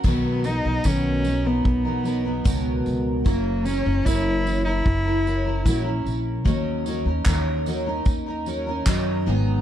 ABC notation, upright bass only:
X:1
M:4/4
L:1/16
Q:1/4=75
K:B
V:1 name="Upright bass" clef=bass
B,,,3 B,,, B,,,4 B,,,4 C,,2 C,,2 | F,,,3 F,,, F,,,4 F,,,4 A,,,2 A,,,2 | D,,3 D,, D,,4 D,,4 F,,2 G,,,2 |]